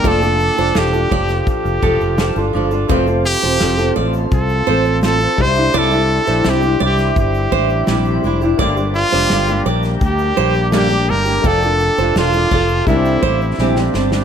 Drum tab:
SH |xxxxxx-xxxxxxx-x|xxx-xx-xxx-xxx-x|xx-xxx-xxx-xxxxx|xxxxxxxxxxxxxx-x|
SD |----o--o----o---|----o-------o---|----o--o----o---|----o--o----o---|
BD |o-----o-o-o-----|o-------o-----o-|--------o-o-----|o-------o-------|

SH |xxxxxxxxxx-x----|
SD |----o-------oooo|
BD |o-----o-o-o-----|